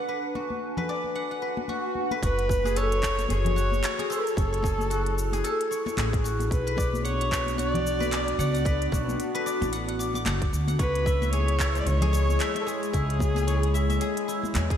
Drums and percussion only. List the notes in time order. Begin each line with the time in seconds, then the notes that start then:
0.35 muted conga
0.50 high conga
0.77 low conga
1.04 high conga
1.57 muted conga
1.68 high conga
1.95 high conga
2.11 muted conga
2.23 kick, closed hi-hat, cabasa
2.39 closed hi-hat
2.49 kick, muted conga, cabasa
2.65 high conga, cabasa
2.76 closed hi-hat, cabasa
2.92 closed hi-hat
3.03 kick, clap, cabasa
3.19 closed hi-hat, high conga, cabasa
3.29 closed hi-hat, muted conga, cabasa
3.45 closed hi-hat, low conga
3.58 cabasa
3.72 high conga, cabasa
3.84 clap, closed hi-hat, cabasa
3.99 closed hi-hat, muted conga
4.12 cabasa
4.27 closed hi-hat, cabasa
4.37 kick, closed hi-hat, cabasa
4.54 closed hi-hat
4.63 kick, muted conga, cabasa
4.79 high conga, cabasa
4.91 closed hi-hat, cabasa
5.06 closed hi-hat
5.18 cabasa
5.32 closed hi-hat, high conga, cabasa
5.45 closed hi-hat, cabasa
5.61 closed hi-hat
5.72 cabasa
5.86 muted conga, cabasa
5.97 clap, closed hi-hat, high conga, cabasa
6.13 kick, closed hi-hat
6.25 cabasa
6.40 closed hi-hat, muted conga, cabasa
6.51 kick, closed hi-hat, cabasa
6.68 closed hi-hat
6.77 kick, muted conga, cabasa
6.93 high conga, cabasa
7.05 closed hi-hat, cabasa
7.21 closed hi-hat
7.31 kick, clap, cabasa
7.47 closed hi-hat, high conga, cabasa
7.58 closed hi-hat, muted conga, cabasa
7.74 closed hi-hat, low conga
7.87 cabasa
8.00 high conga, cabasa
8.13 clap, closed hi-hat, cabasa
8.28 closed hi-hat, muted conga
8.40 cabasa
8.55 closed hi-hat, cabasa
8.66 kick, closed hi-hat, cabasa
8.82 closed hi-hat
8.92 kick, muted conga, cabasa
9.08 high conga, cabasa
9.20 closed hi-hat, cabasa
9.35 closed hi-hat
9.47 cabasa
9.62 closed hi-hat, high conga, cabasa
9.73 closed hi-hat, cabasa
9.89 closed hi-hat
10.00 cabasa
10.14 muted conga, cabasa
10.25 clap, closed hi-hat, high conga, cabasa
10.42 kick, closed hi-hat
10.53 cabasa
10.68 closed hi-hat, muted conga, cabasa
10.79 kick, closed hi-hat, cabasa
10.95 closed hi-hat
11.06 kick, muted conga, cabasa
11.22 high conga, cabasa
11.33 closed hi-hat, cabasa
11.48 closed hi-hat
11.60 kick, clap, cabasa
11.75 closed hi-hat, high conga, cabasa
11.86 closed hi-hat, muted conga, cabasa
12.01 closed hi-hat, low conga
12.14 cabasa
12.29 high conga, cabasa
12.40 clap, closed hi-hat, cabasa
12.55 closed hi-hat, muted conga
12.68 cabasa
12.83 closed hi-hat, cabasa
12.94 kick, closed hi-hat, cabasa
13.10 closed hi-hat
13.19 kick, muted conga, cabasa
13.35 high conga, cabasa
13.48 closed hi-hat, cabasa
13.63 closed hi-hat
13.75 cabasa
13.89 closed hi-hat, high conga, cabasa
14.01 closed hi-hat, cabasa
14.17 closed hi-hat
14.29 cabasa
14.43 muted conga, cabasa
14.54 clap, closed hi-hat, high conga, cabasa
14.70 kick, closed hi-hat